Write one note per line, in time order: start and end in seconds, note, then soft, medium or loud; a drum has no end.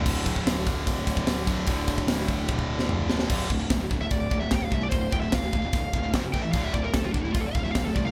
0.05 0.24 D1 medium
0.05 1.49 D2 medium
0.05 1.46 A2 medium
0.05 1.47 D3 loud
0.05 kick loud
0.05 crash loud
0.26 0.44 D1 medium
0.26 kick loud
0.26 open hi-hat medium
0.36 kick medium
0.46 0.64 D1 medium
0.46 snare loud
0.46 open hi-hat loud
0.67 0.85 D1 medium
0.67 kick medium
0.67 open hi-hat medium
0.86 1.23 D1 medium
0.86 kick loud
0.86 open hi-hat medium
1.07 kick medium
1.07 open hi-hat medium
1.17 kick medium
1.26 1.45 D1 loud
1.26 snare loud
1.26 open hi-hat medium
1.47 1.65 D1 medium
1.47 1.66 D2 medium
1.47 1.67 A2 medium
1.47 1.69 D3 medium
1.47 kick medium
1.47 open hi-hat medium
1.67 2.04 D1 medium
1.67 3.08 D2 medium
1.67 3.08 A2 medium
1.67 3.08 D3 loud
1.67 kick loud
1.67 open hi-hat medium
1.88 kick medium
1.88 open hi-hat medium
1.98 kick medium
2.07 2.44 D1 loud
2.07 snare loud
2.07 open hi-hat medium
2.28 kick medium
2.28 open hi-hat medium
2.48 2.85 D1 medium
2.48 kick loud
2.48 high tom medium
2.59 kick medium
2.79 snare medium
2.89 3.26 D1 medium
2.89 mid tom medium
3.09 3.29 D2 medium
3.09 3.29 A2 medium
3.09 3.28 D3 medium
3.09 snare medium
3.19 snare medium
3.30 3.44 D1 loud
3.30 3.49 D2 medium
3.30 3.49 A2 medium
3.30 3.49 D3 medium
3.30 kick loud
3.30 crash loud
3.50 3.64 D1 loud
3.50 3.59 D2 medium
3.50 3.58 A2 medium
3.50 kick medium
3.59 3.68 D2 medium
3.59 3.69 A2 medium
3.70 3.84 D1 medium
3.70 3.80 D2 medium
3.70 3.79 A2 medium
3.70 kick loud
3.70 snare loud
3.70 open hi-hat medium
3.80 3.90 D2 medium
3.80 3.90 A2 medium
3.91 4.05 D1 medium
3.91 4.00 D2 medium
3.91 3.99 A2 medium
3.91 kick medium
4.01 4.10 D2 medium
4.01 4.10 A2 medium
4.01 4.11 E5 medium
4.11 4.26 D1 medium
4.11 4.29 D2 medium
4.11 4.29 A2 medium
4.11 4.41 D5 medium
4.11 kick loud
4.11 open hi-hat medium
4.30 4.45 D1 medium
4.30 4.40 D2 medium
4.30 4.40 A2 medium
4.30 kick medium
4.40 4.50 D2 medium
4.40 4.50 A2 medium
4.40 4.52 E5 medium
4.51 4.66 D1 medium
4.51 4.60 D2 medium
4.51 4.59 A2 medium
4.51 4.55 F5 medium
4.51 kick loud
4.51 snare loud
4.51 open hi-hat medium
4.56 4.65 G5 medium
4.60 4.70 D2 medium
4.60 4.69 A2 medium
4.65 4.71 F5 medium
4.70 4.86 C2 medium
4.70 4.80 D2 medium
4.70 4.80 A2 medium
4.70 4.82 E5 medium
4.70 kick medium
4.81 4.89 D2 medium
4.81 4.90 A2 medium
4.81 4.89 D5 medium
4.89 5.06 D1 medium
4.89 5.09 D2 medium
4.89 5.10 A2 medium
4.89 5.10 C5 medium
4.89 kick loud
4.89 open hi-hat medium
5.11 5.27 D1 medium
5.11 5.21 D2 medium
5.11 5.21 A2 medium
5.11 5.20 G5 loud
5.11 kick medium
5.20 5.31 D2 medium
5.20 5.31 A2 medium
5.20 5.31 E5 medium
5.32 5.47 D1 loud
5.32 5.42 D2 medium
5.32 5.41 A2 medium
5.32 6.11 F5 medium
5.32 kick loud
5.32 snare loud
5.32 open hi-hat medium
5.42 5.51 D2 medium
5.42 5.51 A2 medium
5.53 5.67 D1 medium
5.53 5.61 D2 medium
5.53 5.61 A2 medium
5.53 kick medium
5.62 5.72 D2 medium
5.62 5.72 A2 medium
5.73 5.87 D1 medium
5.73 5.91 D2 medium
5.73 5.91 A2 medium
5.73 kick loud
5.73 open hi-hat medium
5.93 6.14 D1 medium
5.93 6.02 D2 medium
5.93 6.02 A2 medium
5.93 kick medium
6.03 6.13 D2 medium
6.03 6.13 A2 medium
6.13 6.28 F1 medium
6.13 6.22 F2 medium
6.13 6.22 C3 medium
6.13 6.22 F3 loud
6.13 kick loud
6.13 snare loud
6.13 open hi-hat medium
6.23 6.33 F2 medium
6.23 6.33 C3 medium
6.33 6.48 A1 medium
6.33 6.42 A2 medium
6.33 6.42 E3 medium
6.33 6.43 A3 loud
6.33 6.42 G5 medium
6.33 kick medium
6.43 6.54 A2 medium
6.43 6.54 E3 medium
6.43 6.52 E5 medium
6.52 6.68 D1 medium
6.52 6.73 D2 medium
6.52 6.73 A2 loud
6.52 6.74 D3 medium
6.52 6.64 F5 medium
6.52 kick loud
6.52 open hi-hat medium
6.64 6.74 E5 medium
6.73 6.88 D1 medium
6.73 6.83 D2 medium
6.73 6.83 A2 medium
6.73 6.84 D5 medium
6.73 kick medium
6.83 6.94 D2 medium
6.83 6.94 A2 medium
6.83 6.93 A#4 medium
6.94 7.08 D1 loud
6.94 7.03 D2 medium
6.94 7.03 A2 medium
6.94 7.04 A4 medium
6.94 kick loud
6.94 snare loud
6.94 open hi-hat medium
7.03 7.14 D2 medium
7.03 7.14 A2 medium
7.03 7.12 F4 medium
7.12 7.29 D1 medium
7.12 7.24 D2 medium
7.12 7.24 A2 medium
7.12 7.24 D4 medium
7.12 kick medium
7.24 7.33 D2 medium
7.24 7.34 A2 medium
7.24 7.33 E4 medium
7.33 7.49 D1 medium
7.33 7.53 D2 medium
7.33 7.53 A2 medium
7.33 7.40 F4 medium
7.33 kick loud
7.33 open hi-hat medium
7.40 7.47 A4 medium
7.46 7.55 D5 medium
7.55 7.69 D1 medium
7.55 7.64 D2 medium
7.55 7.63 A2 medium
7.55 7.63 F5 loud
7.55 kick medium
7.63 7.74 D2 medium
7.63 7.75 A2 medium
7.63 7.71 E5 medium
7.71 7.89 D1 loud
7.71 7.85 D2 medium
7.71 7.83 F5 medium
7.71 snare loud
7.71 open hi-hat medium
7.75 7.85 A2 medium
7.75 kick loud
7.85 7.96 D2 medium
7.85 7.95 A2 medium
7.85 7.95 A4 medium
7.95 8.10 C2 medium
7.95 8.06 D2 medium
7.95 8.05 A2 medium
7.95 8.05 D5 medium
7.95 kick medium
8.06 8.11 D2 medium
8.06 8.11 A2 medium
8.06 8.11 F5 medium